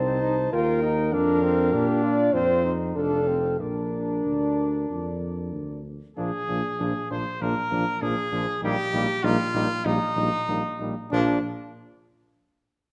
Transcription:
Already playing: tuba C2, trombone C4, flugelhorn D#4, french horn C5, trumpet A5
0.22 trombone D#4
0.52 tuba D#2, flugelhorn F4, trombone F4, french horn A#4, trumpet G5
0.83 flugelhorn D#4, trombone D#4
1.13 tuba F2, flugelhorn D4, trombone D4, french horn A#4, trumpet F5
1.43 trombone C4, flugelhorn D4
1.72 tuba A#2, trombone D4, flugelhorn G4
2.03 flugelhorn F4, french horn D5
2.33 tuba F2, trombone C4, flugelhorn F4, french horn C5
2.64 flugelhorn D#4
2.96 tuba F1, flugelhorn D4, trombone D4, french horn A4, trumpet F5
3.28 flugelhorn C4, trombone C4
3.60 tuba A#1, trombone D4, flugelhorn D4, french horn A#4, trumpet D5
4.25 tuba D2
4.90 tuba F2
5.53 tuba D2
6.17 tuba A#1, trombone F3, french horn A#3, flugelhorn D4, trumpet G#4
6.48 tuba A#1, trombone F3, french horn A#3, flugelhorn D4
6.79 tuba A#1, trombone F3, french horn A#3, flugelhorn D4
7.10 tuba A#1, trombone F3, french horn A#3, flugelhorn D4, trumpet C5
7.40 tuba A#1, trombone F3, french horn A#3, flugelhorn D4, trumpet A#4
7.71 tuba A#1, trombone F3, french horn A#3, flugelhorn D4
8.01 tuba A#1, trombone F3, french horn A#3, flugelhorn D4, trumpet G#4
8.32 tuba A#1, trombone F3, french horn A#3, flugelhorn D4
8.62 tuba A#1, trombone G3, french horn A#3, flugelhorn D#4, trumpet G4
8.93 tuba A#1, trombone G3, french horn A#3, flugelhorn D#4
9.23 tuba A#1, trombone G3, french horn A#3, flugelhorn D#4, trumpet F4
9.54 tuba A#1, trombone G3, french horn A#3, flugelhorn D#4
9.84 tuba A#1, trombone G3, french horn A#3, flugelhorn D#4, trumpet D#4
10.16 tuba A#1, trombone G3, french horn A#3, flugelhorn D#4
10.48 tuba A#1, trombone G3, french horn A#3, flugelhorn D#4
10.79 tuba A#1, trombone G3, french horn A#3, flugelhorn D#4
11.11 tuba A#1, trombone F3, french horn A#3, flugelhorn D4, trumpet D4

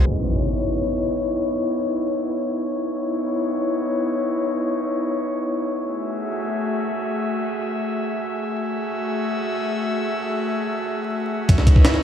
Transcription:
Already playing: analog synth pad C#4 B4 D#5
0.06 analog synth pad B3 D#4 E4 C#5, impact
2.92 analog synth pad B3 D#4 E4 C#5
5.77 analog synth pad A3 F#4 G#4 E5
8.63 analog synth pad A3 F#4 G#4 E5
11.49 sub bass C#2, analog synth pad C#4 D#4 E4 B4, synth texture E6, kick, closed hi-hat
11.58 snare
11.67 kick, closed hi-hat
11.76 kick
11.85 snare, closed hi-hat
11.94 snare

